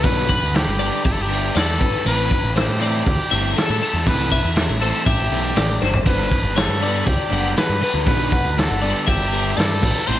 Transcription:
Already playing: B4
0.03 B1 D3 G3 B3 D4 B4, kick, crash
0.28 F#5, muted overdriven electric guitar stroke, kick, crash
0.43 D2
0.54 G4, muted overdriven electric guitar stroke, snare, crash
0.67 G1
0.79 D3 G3 B3 D4 D5, crash
1.04 G1 G4 E5, muted overdriven electric guitar stroke, kick, crash
1.13 A4
1.22 G4
1.29 D3 G3 B3 D4, crash
1.55 E2 A4 D5, muted overdriven electric guitar stroke, snare, crash
1.79 A1 B4, muted overdriven electric guitar stroke, kick, crash
1.95 snare
2.05 A1 E3 A3 C4 E4 B4, crash
2.30 muted overdriven electric guitar stroke, kick, crash
2.43 A1
2.56 G4 C5, muted overdriven electric guitar stroke, snare, crash
2.68 A2
2.79 E3 A3 C4 E4 D5, crash
3.06 D2 G4, muted overdriven electric guitar stroke, kick, crash
3.31 G1 E3 A3 C4 E4 E5, crash
3.56 A4, muted overdriven electric guitar stroke, snare, crash
3.70 A2
3.82 A4, muted overdriven electric guitar stroke, crash
3.94 E2, snare
4.06 C2 E3 A3 C4 E4 B4, kick, crash
4.31 E5, muted overdriven electric guitar stroke, kick, crash
4.44 E2
4.56 muted overdriven electric guitar stroke, snare, crash
4.69 A1
4.81 E3 A3 C4 E4 A4 C5, crash
5.06 A1 G4 E5, muted overdriven electric guitar stroke, kick, crash
5.31 B1 E3 A3 C4 E4, crash
5.55 A1 D5, muted overdriven electric guitar stroke, snare, crash
5.82 G1 C5, muted overdriven electric guitar stroke, snare
5.93 floor tom
6.06 G1 D3 G3 B3 D4 B4, kick, splash, crash
6.31 muted overdriven electric guitar stroke, kick, crash
6.43 G1
6.56 C#5, muted overdriven electric guitar stroke, snare, crash
6.60 A4
6.68 G2
6.80 D3 G3 B3 D4 D5, crash
7.06 C#2 G4, muted overdriven electric guitar stroke, kick, crash
7.30 F#1 D3 G3 B3 D4 F#5, crash
7.56 B4, muted overdriven electric guitar stroke, snare, crash
7.69 G2
7.81 B4, muted overdriven electric guitar stroke, crash
7.94 D2, snare
8.06 B1 D3 G3 B3 D4 B4, kick, crash
8.32 F#5, muted overdriven electric guitar stroke, kick, crash
8.44 D2
8.58 A4, muted overdriven electric guitar stroke, snare, crash
8.70 G1
8.82 D3 G3 B3 D4 D5, crash
9.07 G1 G4 E5, muted overdriven electric guitar stroke, kick, crash
9.32 D3 G3 B3 D4, crash
9.57 G2 A4 D5, muted overdriven electric guitar stroke, snare, crash
9.82 A1 B4, muted overdriven electric guitar stroke, kick, crash
9.97 snare
10.07 A1 E3 A3 C4 E4 C5, crash

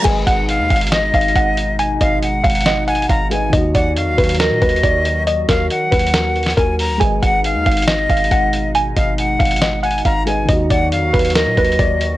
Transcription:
0.02 G#1 B2 G#3 D#4 G#4 G#5, kick, closed hi-hat, crash
0.06 B4 D#5
0.27 G#1 F#5, kick, closed hi-hat
0.49 F5, closed hi-hat
0.60 D#2
0.70 G#1 F5, kick, closed hi-hat
0.76 closed hi-hat
0.81 closed hi-hat
0.87 closed hi-hat
0.92 D#5, snare, closed hi-hat
1.14 G#1 F5, kick, closed hi-hat
1.21 closed hi-hat
1.28 closed hi-hat
1.36 G#1 F#5, kick, closed hi-hat
1.57 closed hi-hat
1.79 G#5, closed hi-hat
2.01 G#1 D#5 F5, kick, closed hi-hat
2.23 F#5, closed hi-hat
2.44 G#1 F5, kick, closed hi-hat
2.50 closed hi-hat
2.55 closed hi-hat
2.61 closed hi-hat
2.66 D#5, snare, closed hi-hat
2.88 F#5 G#5, closed hi-hat
2.95 closed hi-hat
3.02 closed hi-hat
3.09 G#1 F5 A#5, kick, closed hi-hat
3.30 G#3 G#4 B4 D#5 G#5, closed hi-hat
3.50 D#2 D#3 F#3 D#4 F#4 D#5, kick, closed hi-hat
3.56 F#4
3.75 D#2 D5 F#5, kick, closed hi-hat
3.96 F2 F5, closed hi-hat
4.07 D#2
4.18 D#2 B4, kick, closed hi-hat
4.24 closed hi-hat
4.29 closed hi-hat
4.35 closed hi-hat
4.40 A#4 D#5, snare, closed hi-hat
4.51 A#2
4.62 D#2 B4, kick, closed hi-hat
4.69 closed hi-hat
4.76 closed hi-hat
4.83 D#2 D5, kick, closed hi-hat
5.05 closed hi-hat
5.27 D#5, closed hi-hat
5.49 D#2 A#4 F5, kick, snare, closed hi-hat
5.70 F#5, closed hi-hat
5.91 D#2 B4, kick, closed hi-hat
5.99 closed hi-hat
6.07 closed hi-hat
6.14 A#4, snare, closed hi-hat
6.36 closed hi-hat
6.43 snare, closed hi-hat
6.50 closed hi-hat
6.57 D#2 A#4 G#5, kick, closed hi-hat
6.79 A#5, open hi-hat
6.90 D2
6.98 G#1 B2 G#3 D#4 G#4 G#5, kick, closed hi-hat
7.02 B4 D#5
7.22 G#1 F#5, kick, closed hi-hat
7.44 F5, closed hi-hat
7.55 D#2
7.66 G#1 F5, kick, closed hi-hat
7.71 closed hi-hat
7.77 closed hi-hat
7.82 closed hi-hat
7.87 D#5, snare, closed hi-hat
8.10 G#1 F5, kick, closed hi-hat
8.17 closed hi-hat
8.24 closed hi-hat
8.31 G#1 F#5, kick, closed hi-hat
8.53 closed hi-hat
8.75 G#5, closed hi-hat
8.96 G#1 D#5 F5, kick, closed hi-hat
9.18 F#5, closed hi-hat
9.39 G#1 F5, kick, closed hi-hat
9.45 closed hi-hat
9.51 closed hi-hat
9.56 closed hi-hat
9.62 D#5, snare, closed hi-hat
9.83 F#5 G#5, closed hi-hat
9.91 closed hi-hat
9.98 closed hi-hat
10.05 G#1 F5 A#5, kick, closed hi-hat
10.25 G#3 G#4 B4 D#5 G#5, closed hi-hat
10.45 D#2 D#3 F#3 D#4 F#4 D#5, kick, closed hi-hat
10.52 F#4
10.70 D#2 D5 F#5, kick, closed hi-hat
10.92 F2 F5, closed hi-hat
11.03 D#2
11.13 D#2 B4, kick, closed hi-hat
11.19 closed hi-hat
11.25 closed hi-hat
11.30 closed hi-hat
11.35 A#4 D#5, snare, closed hi-hat
11.46 A#2
11.57 D#2 B4, kick, closed hi-hat
11.65 closed hi-hat
11.72 closed hi-hat
11.79 D#2 D5, kick, closed hi-hat
12.01 closed hi-hat

